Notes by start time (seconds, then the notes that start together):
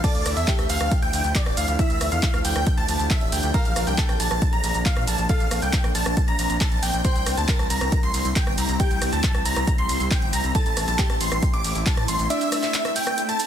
Already playing: E4 A4
0.04 D3 F3 D4 A4 D5 A5, kick, closed hi-hat, ride, crash, shaker
0.15 D2, closed hi-hat, shaker
0.26 D2, cross-stick, open hi-hat, ride, shaker
0.37 E2 E5, closed hi-hat, shaker
0.48 G4 G5, kick, clap, closed hi-hat, ride, shaker
0.59 D2, cross-stick, closed hi-hat, shaker
0.69 D2 F5, open hi-hat, ride, shaker
0.80 D2, cross-stick, closed hi-hat, shaker
0.91 kick, closed hi-hat, ride, shaker
1.02 D2 G5, closed hi-hat
1.13 D2, open hi-hat, ride, shaker
1.24 D2, closed hi-hat, shaker
1.35 D5, kick, clap, closed hi-hat, ride, shaker
1.46 D1, cross-stick, closed hi-hat
1.57 D2 F5, open hi-hat, ride, shaker
1.68 D2, closed hi-hat, shaker
1.79 E4 G4 E5, kick, closed hi-hat, ride, shaker
1.90 D2, closed hi-hat, shaker
2.01 D2, cross-stick, open hi-hat, ride, shaker
2.12 E2 F5, closed hi-hat, shaker
2.23 kick, clap, closed hi-hat, ride, shaker
2.34 D2, cross-stick, closed hi-hat, shaker
2.45 D2 G5, open hi-hat, ride, shaker
2.56 D2, cross-stick, closed hi-hat, shaker
2.67 kick, closed hi-hat, ride, shaker
2.77 D2 A5, closed hi-hat
2.89 D2, open hi-hat, ride, shaker
2.99 D2, closed hi-hat, shaker
3.10 E5, kick, clap, closed hi-hat, ride, shaker
3.21 D1, closed hi-hat
3.32 D2 G5, open hi-hat, ride, shaker
3.43 D2, closed hi-hat, shaker
3.54 A#3 C4 A#4 F5 A#5, kick, closed hi-hat, ride, shaker
3.65 A#1, closed hi-hat, shaker
3.76 A#1, cross-stick, open hi-hat, ride, shaker
3.87 C2 G5, closed hi-hat, shaker
3.98 A4 A5, kick, clap, closed hi-hat, ride, shaker
4.09 A#1, cross-stick, closed hi-hat, shaker
4.20 A#1 A5, open hi-hat, ride, shaker
4.31 A#1, cross-stick, closed hi-hat, shaker
4.42 kick, closed hi-hat, ride, shaker
4.53 A#1 A#5, closed hi-hat
4.64 A#1, open hi-hat, ride, shaker
4.75 A#1, closed hi-hat, shaker
4.86 F5, kick, clap, closed hi-hat, ride, shaker
4.96 A#2, cross-stick, closed hi-hat
5.07 A#1 A5, open hi-hat, ride, shaker
5.18 A#1, closed hi-hat, shaker
5.29 A4 F5 A5, kick, closed hi-hat, ride, shaker
5.40 A#1, closed hi-hat, shaker
5.51 A#1, cross-stick, open hi-hat, ride, shaker
5.62 C2 G5, closed hi-hat, shaker
5.73 kick, clap, closed hi-hat, ride, shaker
5.84 A#1, cross-stick, closed hi-hat, shaker
5.95 A#1 A5, open hi-hat, ride, shaker
6.06 A#1, cross-stick, closed hi-hat, shaker
6.17 kick, closed hi-hat, ride, shaker
6.28 A#1 A#5, closed hi-hat
6.39 A#1, open hi-hat, ride, shaker
6.50 A#1, closed hi-hat, shaker
6.61 A5, kick, clap, closed hi-hat, ride, shaker
6.72 A#1, closed hi-hat
6.83 A#1 G5, open hi-hat, ride, shaker
6.94 A#1, closed hi-hat, shaker
7.05 G3 E4 C5 G5 C6, kick, closed hi-hat, ride, shaker
7.15 C2, closed hi-hat, shaker
7.26 C2, cross-stick, open hi-hat, ride, shaker
7.37 D2 A5, closed hi-hat, shaker
7.48 A#4 A#5, kick, clap, closed hi-hat, ride, shaker
7.59 C2, cross-stick, closed hi-hat, shaker
7.70 C2 A#5, open hi-hat, ride, shaker
7.81 C2, cross-stick, closed hi-hat, shaker
7.92 kick, closed hi-hat, ride, shaker
8.03 C2 C6, closed hi-hat
8.14 C2, open hi-hat, ride, shaker
8.25 C2, closed hi-hat, shaker
8.36 G5, kick, clap, closed hi-hat, ride, shaker
8.47 G1, cross-stick, closed hi-hat
8.58 C2 A#5, open hi-hat, ride, shaker
8.69 C2, closed hi-hat, shaker
8.80 G4 G5, kick, closed hi-hat, ride, shaker
8.91 C2, closed hi-hat, shaker
9.02 C2, cross-stick, open hi-hat, ride, shaker
9.13 D2 A5, closed hi-hat, shaker
9.24 kick, clap, closed hi-hat, ride, shaker
9.35 C2, cross-stick, closed hi-hat, shaker
9.45 C2 A#5, open hi-hat, ride, shaker
9.56 C2, cross-stick, closed hi-hat, shaker
9.67 kick, closed hi-hat, ride, shaker
9.78 C2 C6, closed hi-hat
9.89 C2, open hi-hat, ride, shaker
10.00 C2, closed hi-hat, shaker
10.11 G5, kick, clap, closed hi-hat, ride, shaker
10.22 G1, closed hi-hat
10.33 C2 A#5, open hi-hat, ride, shaker
10.44 C2, closed hi-hat, shaker
10.55 A3 A4 A5, kick, closed hi-hat, ride, shaker
10.66 A1, closed hi-hat, shaker
10.77 A1, cross-stick, open hi-hat, ride, shaker
10.88 A#1 A5, closed hi-hat, shaker
10.99 G4 G5, kick, clap, closed hi-hat, ride, shaker
11.10 A1, cross-stick, closed hi-hat, shaker
11.21 A1 C6, open hi-hat, ride, shaker
11.32 A1, cross-stick, closed hi-hat, shaker
11.43 kick, closed hi-hat, ride, shaker
11.53 A1 D6, closed hi-hat
11.64 A1, open hi-hat, ride, shaker
11.75 A1, closed hi-hat, shaker
11.86 A5, kick, clap, closed hi-hat, ride, shaker
11.97 A2, cross-stick, closed hi-hat
12.08 A1 C6, open hi-hat, ride, shaker
12.19 A1, closed hi-hat, shaker
12.30 D4 D5 E5, closed hi-hat, ride, shaker
12.41 closed hi-hat, shaker
12.52 cross-stick, open hi-hat, ride, shaker
12.63 E5, clap, closed hi-hat, shaker
12.74 clap, closed hi-hat, ride, shaker
12.85 cross-stick, closed hi-hat, shaker
12.96 G5, open hi-hat, ride, shaker
13.07 cross-stick, closed hi-hat, shaker
13.18 closed hi-hat, ride, shaker
13.29 A5, closed hi-hat, shaker
13.40 open hi-hat, ride, shaker